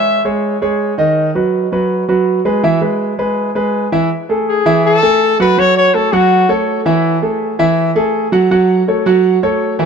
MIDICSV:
0, 0, Header, 1, 3, 480
1, 0, Start_track
1, 0, Key_signature, 3, "major"
1, 0, Tempo, 366972
1, 1528, Time_signature, 4, 2, 24, 8
1, 12889, End_track
2, 0, Start_track
2, 0, Title_t, "Trumpet"
2, 0, Program_c, 0, 56
2, 0, Note_on_c, 0, 76, 102
2, 332, Note_off_c, 0, 76, 0
2, 5871, Note_on_c, 0, 68, 78
2, 6310, Note_off_c, 0, 68, 0
2, 6348, Note_on_c, 0, 69, 101
2, 7010, Note_off_c, 0, 69, 0
2, 7074, Note_on_c, 0, 71, 104
2, 7311, Note_on_c, 0, 73, 117
2, 7331, Note_off_c, 0, 71, 0
2, 7537, Note_off_c, 0, 73, 0
2, 7545, Note_on_c, 0, 73, 105
2, 7774, Note_on_c, 0, 69, 89
2, 7793, Note_off_c, 0, 73, 0
2, 8016, Note_on_c, 0, 66, 97
2, 8036, Note_off_c, 0, 69, 0
2, 8493, Note_off_c, 0, 66, 0
2, 12889, End_track
3, 0, Start_track
3, 0, Title_t, "Grand piano"
3, 0, Program_c, 1, 0
3, 0, Note_on_c, 1, 56, 67
3, 0, Note_on_c, 1, 68, 61
3, 0, Note_on_c, 1, 73, 63
3, 233, Note_off_c, 1, 56, 0
3, 236, Note_off_c, 1, 68, 0
3, 239, Note_off_c, 1, 73, 0
3, 323, Note_on_c, 1, 56, 76
3, 328, Note_on_c, 1, 68, 73
3, 330, Note_on_c, 1, 73, 78
3, 718, Note_off_c, 1, 56, 0
3, 721, Note_off_c, 1, 68, 0
3, 722, Note_off_c, 1, 73, 0
3, 806, Note_on_c, 1, 56, 71
3, 811, Note_on_c, 1, 68, 76
3, 815, Note_on_c, 1, 73, 75
3, 1200, Note_off_c, 1, 56, 0
3, 1203, Note_off_c, 1, 68, 0
3, 1206, Note_off_c, 1, 73, 0
3, 1280, Note_on_c, 1, 51, 81
3, 1287, Note_on_c, 1, 63, 85
3, 1290, Note_on_c, 1, 75, 85
3, 1678, Note_off_c, 1, 51, 0
3, 1682, Note_off_c, 1, 63, 0
3, 1684, Note_off_c, 1, 75, 0
3, 1767, Note_on_c, 1, 54, 61
3, 1769, Note_on_c, 1, 66, 67
3, 1773, Note_on_c, 1, 71, 63
3, 2162, Note_off_c, 1, 54, 0
3, 2163, Note_off_c, 1, 66, 0
3, 2166, Note_off_c, 1, 71, 0
3, 2251, Note_on_c, 1, 54, 73
3, 2255, Note_on_c, 1, 66, 70
3, 2259, Note_on_c, 1, 71, 80
3, 2645, Note_off_c, 1, 54, 0
3, 2648, Note_off_c, 1, 66, 0
3, 2650, Note_off_c, 1, 71, 0
3, 2728, Note_on_c, 1, 54, 73
3, 2729, Note_on_c, 1, 66, 78
3, 2733, Note_on_c, 1, 71, 72
3, 3124, Note_off_c, 1, 54, 0
3, 3124, Note_off_c, 1, 66, 0
3, 3127, Note_off_c, 1, 71, 0
3, 3205, Note_on_c, 1, 56, 74
3, 3207, Note_on_c, 1, 68, 74
3, 3212, Note_on_c, 1, 71, 81
3, 3405, Note_off_c, 1, 56, 0
3, 3406, Note_off_c, 1, 68, 0
3, 3409, Note_off_c, 1, 71, 0
3, 3445, Note_on_c, 1, 52, 86
3, 3448, Note_on_c, 1, 64, 83
3, 3454, Note_on_c, 1, 76, 89
3, 3645, Note_off_c, 1, 52, 0
3, 3647, Note_off_c, 1, 64, 0
3, 3650, Note_off_c, 1, 76, 0
3, 3678, Note_on_c, 1, 56, 66
3, 3681, Note_on_c, 1, 68, 67
3, 3687, Note_on_c, 1, 71, 66
3, 4079, Note_off_c, 1, 56, 0
3, 4080, Note_off_c, 1, 68, 0
3, 4084, Note_off_c, 1, 71, 0
3, 4167, Note_on_c, 1, 56, 69
3, 4168, Note_on_c, 1, 68, 77
3, 4173, Note_on_c, 1, 71, 83
3, 4564, Note_off_c, 1, 56, 0
3, 4564, Note_off_c, 1, 68, 0
3, 4568, Note_off_c, 1, 71, 0
3, 4645, Note_on_c, 1, 56, 74
3, 4649, Note_on_c, 1, 68, 75
3, 4654, Note_on_c, 1, 71, 82
3, 5042, Note_off_c, 1, 56, 0
3, 5045, Note_off_c, 1, 68, 0
3, 5048, Note_off_c, 1, 71, 0
3, 5129, Note_on_c, 1, 52, 76
3, 5132, Note_on_c, 1, 64, 92
3, 5136, Note_on_c, 1, 76, 85
3, 5328, Note_off_c, 1, 52, 0
3, 5330, Note_off_c, 1, 64, 0
3, 5332, Note_off_c, 1, 76, 0
3, 5614, Note_on_c, 1, 57, 63
3, 5619, Note_on_c, 1, 68, 67
3, 5620, Note_on_c, 1, 69, 68
3, 6008, Note_off_c, 1, 57, 0
3, 6011, Note_off_c, 1, 68, 0
3, 6011, Note_off_c, 1, 69, 0
3, 6092, Note_on_c, 1, 52, 92
3, 6093, Note_on_c, 1, 64, 97
3, 6099, Note_on_c, 1, 76, 92
3, 6486, Note_off_c, 1, 52, 0
3, 6487, Note_off_c, 1, 64, 0
3, 6490, Note_off_c, 1, 76, 0
3, 6575, Note_on_c, 1, 57, 76
3, 6580, Note_on_c, 1, 80, 82
3, 6583, Note_on_c, 1, 69, 79
3, 6968, Note_off_c, 1, 57, 0
3, 6970, Note_off_c, 1, 80, 0
3, 6972, Note_off_c, 1, 69, 0
3, 7057, Note_on_c, 1, 54, 91
3, 7061, Note_on_c, 1, 66, 91
3, 7063, Note_on_c, 1, 78, 87
3, 7252, Note_off_c, 1, 54, 0
3, 7255, Note_off_c, 1, 66, 0
3, 7256, Note_off_c, 1, 78, 0
3, 7293, Note_on_c, 1, 54, 84
3, 7300, Note_on_c, 1, 66, 81
3, 7302, Note_on_c, 1, 78, 84
3, 7686, Note_off_c, 1, 54, 0
3, 7690, Note_off_c, 1, 66, 0
3, 7691, Note_off_c, 1, 78, 0
3, 7771, Note_on_c, 1, 57, 67
3, 7775, Note_on_c, 1, 69, 63
3, 7778, Note_on_c, 1, 73, 72
3, 7968, Note_off_c, 1, 57, 0
3, 7970, Note_off_c, 1, 69, 0
3, 7972, Note_off_c, 1, 73, 0
3, 8013, Note_on_c, 1, 54, 97
3, 8017, Note_on_c, 1, 66, 86
3, 8019, Note_on_c, 1, 78, 90
3, 8406, Note_off_c, 1, 54, 0
3, 8408, Note_off_c, 1, 66, 0
3, 8409, Note_off_c, 1, 78, 0
3, 8488, Note_on_c, 1, 57, 82
3, 8490, Note_on_c, 1, 69, 87
3, 8495, Note_on_c, 1, 73, 84
3, 8882, Note_off_c, 1, 57, 0
3, 8884, Note_off_c, 1, 69, 0
3, 8886, Note_off_c, 1, 73, 0
3, 8967, Note_on_c, 1, 52, 95
3, 8970, Note_on_c, 1, 64, 90
3, 8975, Note_on_c, 1, 76, 87
3, 9361, Note_off_c, 1, 52, 0
3, 9363, Note_off_c, 1, 64, 0
3, 9366, Note_off_c, 1, 76, 0
3, 9446, Note_on_c, 1, 57, 72
3, 9449, Note_on_c, 1, 68, 61
3, 9452, Note_on_c, 1, 69, 64
3, 9840, Note_off_c, 1, 57, 0
3, 9842, Note_off_c, 1, 68, 0
3, 9844, Note_off_c, 1, 69, 0
3, 9927, Note_on_c, 1, 52, 90
3, 9932, Note_on_c, 1, 64, 99
3, 9933, Note_on_c, 1, 76, 97
3, 10321, Note_off_c, 1, 52, 0
3, 10324, Note_off_c, 1, 64, 0
3, 10324, Note_off_c, 1, 76, 0
3, 10403, Note_on_c, 1, 57, 78
3, 10409, Note_on_c, 1, 68, 88
3, 10411, Note_on_c, 1, 69, 83
3, 10798, Note_off_c, 1, 57, 0
3, 10802, Note_off_c, 1, 68, 0
3, 10802, Note_off_c, 1, 69, 0
3, 10883, Note_on_c, 1, 54, 93
3, 10886, Note_on_c, 1, 66, 87
3, 10893, Note_on_c, 1, 78, 91
3, 11081, Note_off_c, 1, 54, 0
3, 11083, Note_off_c, 1, 66, 0
3, 11087, Note_off_c, 1, 78, 0
3, 11130, Note_on_c, 1, 54, 89
3, 11133, Note_on_c, 1, 66, 85
3, 11136, Note_on_c, 1, 78, 86
3, 11522, Note_off_c, 1, 54, 0
3, 11523, Note_off_c, 1, 66, 0
3, 11525, Note_off_c, 1, 78, 0
3, 11612, Note_on_c, 1, 57, 72
3, 11616, Note_on_c, 1, 69, 61
3, 11619, Note_on_c, 1, 73, 67
3, 11806, Note_off_c, 1, 57, 0
3, 11809, Note_off_c, 1, 69, 0
3, 11810, Note_off_c, 1, 73, 0
3, 11850, Note_on_c, 1, 54, 97
3, 11855, Note_on_c, 1, 66, 91
3, 11861, Note_on_c, 1, 78, 87
3, 12241, Note_off_c, 1, 54, 0
3, 12244, Note_off_c, 1, 66, 0
3, 12248, Note_off_c, 1, 78, 0
3, 12331, Note_on_c, 1, 57, 77
3, 12335, Note_on_c, 1, 69, 79
3, 12337, Note_on_c, 1, 73, 84
3, 12722, Note_off_c, 1, 57, 0
3, 12724, Note_off_c, 1, 69, 0
3, 12725, Note_off_c, 1, 73, 0
3, 12805, Note_on_c, 1, 52, 92
3, 12810, Note_on_c, 1, 64, 90
3, 12812, Note_on_c, 1, 76, 79
3, 12889, Note_off_c, 1, 52, 0
3, 12889, Note_off_c, 1, 64, 0
3, 12889, Note_off_c, 1, 76, 0
3, 12889, End_track
0, 0, End_of_file